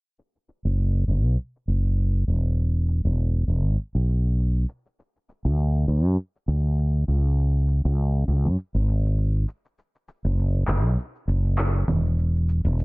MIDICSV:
0, 0, Header, 1, 3, 480
1, 0, Start_track
1, 0, Tempo, 600000
1, 145, Time_signature, 4, 2, 24, 8
1, 10278, End_track
2, 0, Start_track
2, 0, Title_t, "Fretless electric bass"
2, 0, Program_c, 0, 35
2, 520, Note_on_c, 0, 30, 85
2, 834, Note_off_c, 0, 30, 0
2, 862, Note_on_c, 0, 30, 80
2, 999, Note_off_c, 0, 30, 0
2, 999, Note_on_c, 0, 35, 67
2, 1084, Note_off_c, 0, 35, 0
2, 1342, Note_on_c, 0, 30, 71
2, 1793, Note_off_c, 0, 30, 0
2, 1822, Note_on_c, 0, 28, 64
2, 2399, Note_off_c, 0, 28, 0
2, 2439, Note_on_c, 0, 28, 85
2, 2753, Note_off_c, 0, 28, 0
2, 2782, Note_on_c, 0, 28, 76
2, 2918, Note_off_c, 0, 28, 0
2, 2918, Note_on_c, 0, 32, 67
2, 3004, Note_off_c, 0, 32, 0
2, 3159, Note_on_c, 0, 35, 81
2, 3713, Note_off_c, 0, 35, 0
2, 4359, Note_on_c, 0, 38, 93
2, 4673, Note_off_c, 0, 38, 0
2, 4704, Note_on_c, 0, 38, 86
2, 4840, Note_off_c, 0, 38, 0
2, 4840, Note_on_c, 0, 42, 70
2, 4925, Note_off_c, 0, 42, 0
2, 5183, Note_on_c, 0, 38, 74
2, 5633, Note_off_c, 0, 38, 0
2, 5665, Note_on_c, 0, 37, 71
2, 6240, Note_off_c, 0, 37, 0
2, 6280, Note_on_c, 0, 37, 86
2, 6594, Note_off_c, 0, 37, 0
2, 6623, Note_on_c, 0, 37, 81
2, 6759, Note_on_c, 0, 42, 64
2, 6771, Note_off_c, 0, 37, 0
2, 6845, Note_off_c, 0, 42, 0
2, 6996, Note_on_c, 0, 32, 80
2, 7552, Note_off_c, 0, 32, 0
2, 8198, Note_on_c, 0, 30, 89
2, 8512, Note_off_c, 0, 30, 0
2, 8542, Note_on_c, 0, 30, 84
2, 8677, Note_off_c, 0, 30, 0
2, 8677, Note_on_c, 0, 35, 72
2, 8764, Note_off_c, 0, 35, 0
2, 9021, Note_on_c, 0, 30, 74
2, 9472, Note_off_c, 0, 30, 0
2, 9501, Note_on_c, 0, 28, 74
2, 10079, Note_off_c, 0, 28, 0
2, 10118, Note_on_c, 0, 28, 91
2, 10278, Note_off_c, 0, 28, 0
2, 10278, End_track
3, 0, Start_track
3, 0, Title_t, "Drums"
3, 148, Note_on_c, 9, 82, 35
3, 228, Note_off_c, 9, 82, 0
3, 284, Note_on_c, 9, 82, 18
3, 364, Note_off_c, 9, 82, 0
3, 389, Note_on_c, 9, 82, 62
3, 469, Note_off_c, 9, 82, 0
3, 525, Note_on_c, 9, 82, 29
3, 605, Note_off_c, 9, 82, 0
3, 628, Note_on_c, 9, 82, 37
3, 708, Note_off_c, 9, 82, 0
3, 766, Note_on_c, 9, 82, 18
3, 846, Note_off_c, 9, 82, 0
3, 869, Note_on_c, 9, 82, 63
3, 949, Note_off_c, 9, 82, 0
3, 1006, Note_on_c, 9, 82, 28
3, 1086, Note_off_c, 9, 82, 0
3, 1108, Note_on_c, 9, 82, 40
3, 1188, Note_off_c, 9, 82, 0
3, 1246, Note_on_c, 9, 82, 20
3, 1326, Note_off_c, 9, 82, 0
3, 1349, Note_on_c, 9, 82, 62
3, 1429, Note_off_c, 9, 82, 0
3, 1484, Note_on_c, 9, 82, 28
3, 1564, Note_off_c, 9, 82, 0
3, 1590, Note_on_c, 9, 82, 38
3, 1670, Note_off_c, 9, 82, 0
3, 1726, Note_on_c, 9, 82, 18
3, 1806, Note_off_c, 9, 82, 0
3, 1828, Note_on_c, 9, 82, 66
3, 1908, Note_off_c, 9, 82, 0
3, 1967, Note_on_c, 9, 82, 29
3, 2047, Note_off_c, 9, 82, 0
3, 2073, Note_on_c, 9, 82, 38
3, 2153, Note_off_c, 9, 82, 0
3, 2205, Note_on_c, 9, 82, 19
3, 2285, Note_off_c, 9, 82, 0
3, 2310, Note_on_c, 9, 82, 70
3, 2390, Note_off_c, 9, 82, 0
3, 2446, Note_on_c, 9, 82, 30
3, 2526, Note_off_c, 9, 82, 0
3, 2550, Note_on_c, 9, 82, 39
3, 2630, Note_off_c, 9, 82, 0
3, 2687, Note_on_c, 9, 82, 19
3, 2767, Note_off_c, 9, 82, 0
3, 2790, Note_on_c, 9, 82, 68
3, 2870, Note_off_c, 9, 82, 0
3, 2925, Note_on_c, 9, 82, 31
3, 3005, Note_off_c, 9, 82, 0
3, 3029, Note_on_c, 9, 82, 43
3, 3109, Note_off_c, 9, 82, 0
3, 3167, Note_on_c, 9, 82, 19
3, 3247, Note_off_c, 9, 82, 0
3, 3271, Note_on_c, 9, 82, 62
3, 3351, Note_off_c, 9, 82, 0
3, 3407, Note_on_c, 9, 82, 29
3, 3487, Note_off_c, 9, 82, 0
3, 3512, Note_on_c, 9, 82, 41
3, 3592, Note_off_c, 9, 82, 0
3, 3646, Note_on_c, 9, 82, 18
3, 3726, Note_off_c, 9, 82, 0
3, 3748, Note_on_c, 9, 82, 63
3, 3828, Note_off_c, 9, 82, 0
3, 3886, Note_on_c, 9, 82, 28
3, 3966, Note_off_c, 9, 82, 0
3, 3991, Note_on_c, 9, 82, 39
3, 4071, Note_off_c, 9, 82, 0
3, 4127, Note_on_c, 9, 82, 21
3, 4207, Note_off_c, 9, 82, 0
3, 4231, Note_on_c, 9, 82, 67
3, 4311, Note_off_c, 9, 82, 0
3, 4368, Note_on_c, 9, 82, 30
3, 4448, Note_off_c, 9, 82, 0
3, 4471, Note_on_c, 9, 82, 40
3, 4551, Note_off_c, 9, 82, 0
3, 4606, Note_on_c, 9, 82, 20
3, 4686, Note_off_c, 9, 82, 0
3, 4709, Note_on_c, 9, 82, 73
3, 4789, Note_off_c, 9, 82, 0
3, 4846, Note_on_c, 9, 82, 31
3, 4926, Note_off_c, 9, 82, 0
3, 4950, Note_on_c, 9, 82, 43
3, 5030, Note_off_c, 9, 82, 0
3, 5085, Note_on_c, 9, 82, 20
3, 5165, Note_off_c, 9, 82, 0
3, 5189, Note_on_c, 9, 82, 70
3, 5269, Note_off_c, 9, 82, 0
3, 5324, Note_on_c, 9, 82, 30
3, 5404, Note_off_c, 9, 82, 0
3, 5427, Note_on_c, 9, 82, 43
3, 5507, Note_off_c, 9, 82, 0
3, 5563, Note_on_c, 9, 82, 19
3, 5643, Note_off_c, 9, 82, 0
3, 5666, Note_on_c, 9, 82, 74
3, 5746, Note_off_c, 9, 82, 0
3, 5803, Note_on_c, 9, 82, 30
3, 5883, Note_off_c, 9, 82, 0
3, 5906, Note_on_c, 9, 82, 39
3, 5986, Note_off_c, 9, 82, 0
3, 6042, Note_on_c, 9, 82, 20
3, 6122, Note_off_c, 9, 82, 0
3, 6144, Note_on_c, 9, 82, 72
3, 6224, Note_off_c, 9, 82, 0
3, 6281, Note_on_c, 9, 82, 33
3, 6361, Note_off_c, 9, 82, 0
3, 6386, Note_on_c, 9, 82, 37
3, 6466, Note_off_c, 9, 82, 0
3, 6521, Note_on_c, 9, 82, 20
3, 6601, Note_off_c, 9, 82, 0
3, 6624, Note_on_c, 9, 82, 69
3, 6704, Note_off_c, 9, 82, 0
3, 6763, Note_on_c, 9, 82, 31
3, 6843, Note_off_c, 9, 82, 0
3, 6866, Note_on_c, 9, 82, 44
3, 6946, Note_off_c, 9, 82, 0
3, 7002, Note_on_c, 9, 82, 21
3, 7082, Note_off_c, 9, 82, 0
3, 7105, Note_on_c, 9, 82, 65
3, 7185, Note_off_c, 9, 82, 0
3, 7242, Note_on_c, 9, 82, 30
3, 7322, Note_off_c, 9, 82, 0
3, 7346, Note_on_c, 9, 82, 40
3, 7426, Note_off_c, 9, 82, 0
3, 7483, Note_on_c, 9, 82, 19
3, 7563, Note_off_c, 9, 82, 0
3, 7585, Note_on_c, 9, 82, 74
3, 7665, Note_off_c, 9, 82, 0
3, 7720, Note_on_c, 9, 82, 27
3, 7800, Note_off_c, 9, 82, 0
3, 7826, Note_on_c, 9, 82, 38
3, 7906, Note_off_c, 9, 82, 0
3, 7961, Note_on_c, 9, 82, 20
3, 8041, Note_off_c, 9, 82, 0
3, 8066, Note_on_c, 9, 82, 69
3, 8146, Note_off_c, 9, 82, 0
3, 8201, Note_on_c, 9, 82, 31
3, 8281, Note_off_c, 9, 82, 0
3, 8305, Note_on_c, 9, 82, 37
3, 8385, Note_off_c, 9, 82, 0
3, 8442, Note_on_c, 9, 82, 18
3, 8522, Note_off_c, 9, 82, 0
3, 8542, Note_on_c, 9, 39, 65
3, 8544, Note_on_c, 9, 82, 70
3, 8622, Note_off_c, 9, 39, 0
3, 8624, Note_off_c, 9, 82, 0
3, 8680, Note_on_c, 9, 82, 30
3, 8760, Note_off_c, 9, 82, 0
3, 8785, Note_on_c, 9, 82, 39
3, 8865, Note_off_c, 9, 82, 0
3, 8923, Note_on_c, 9, 82, 20
3, 9003, Note_off_c, 9, 82, 0
3, 9025, Note_on_c, 9, 82, 67
3, 9105, Note_off_c, 9, 82, 0
3, 9161, Note_on_c, 9, 82, 30
3, 9241, Note_off_c, 9, 82, 0
3, 9266, Note_on_c, 9, 39, 71
3, 9268, Note_on_c, 9, 82, 37
3, 9346, Note_off_c, 9, 39, 0
3, 9348, Note_off_c, 9, 82, 0
3, 9403, Note_on_c, 9, 82, 19
3, 9483, Note_off_c, 9, 82, 0
3, 9505, Note_on_c, 9, 64, 53
3, 9507, Note_on_c, 9, 82, 69
3, 9585, Note_off_c, 9, 64, 0
3, 9587, Note_off_c, 9, 82, 0
3, 9644, Note_on_c, 9, 82, 30
3, 9724, Note_off_c, 9, 82, 0
3, 9747, Note_on_c, 9, 82, 36
3, 9827, Note_off_c, 9, 82, 0
3, 9885, Note_on_c, 9, 82, 20
3, 9965, Note_off_c, 9, 82, 0
3, 9988, Note_on_c, 9, 82, 64
3, 10068, Note_off_c, 9, 82, 0
3, 10125, Note_on_c, 9, 82, 30
3, 10205, Note_off_c, 9, 82, 0
3, 10229, Note_on_c, 9, 82, 37
3, 10278, Note_off_c, 9, 82, 0
3, 10278, End_track
0, 0, End_of_file